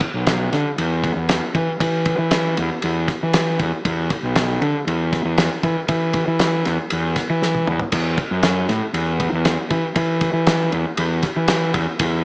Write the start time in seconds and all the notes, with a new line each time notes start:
0.00 kick, ride
0.14 B1
0.27 snare, ride
0.53 D3, snare, ride
0.78 E2, ride
1.04 kick, ride
1.16 E2
1.29 snare, ride
1.55 E3, kick, ride
1.80 E3, kick, ride
2.05 kick, ride
2.18 E3
2.31 snare, ride
2.57 E2, ride
2.82 E2, ride
3.08 kick, snare, ride
3.23 E3
3.33 snare, ride
3.59 E2, kick, ride
3.85 E2, kick, ride
4.10 kick, ride
4.23 B1
4.35 snare, ride
4.62 D3, ride
4.87 E2, ride
5.13 kick, snare, ride
5.25 E2
5.38 snare, ride
5.63 E3, kick, ride
5.88 E3, kick, ride
6.13 kick, ride
6.27 E3
6.39 snare, ride
6.65 E2, snare, ride
6.90 E2, ride
7.16 kick, snare, ride
7.30 E3
7.42 snare
7.55 high tom
7.67 E2, mid tom
7.80 floor tom
7.92 E2, kick, crash, ride
8.18 kick, ride
8.31 F#2
8.43 snare, ride
8.69 A2, snare, ride
8.93 E2, ride
9.20 kick, ride
9.32 E2
9.45 snare, ride
9.70 E3, kick, ride
9.96 E3, kick, ride
10.21 kick, ride
10.33 E3
10.47 snare, ride
10.72 E2, ride
10.97 E2, ride
11.23 kick, snare, ride
11.36 E3
11.48 snare, ride
11.74 E2, kick, ride
11.99 E2, kick, ride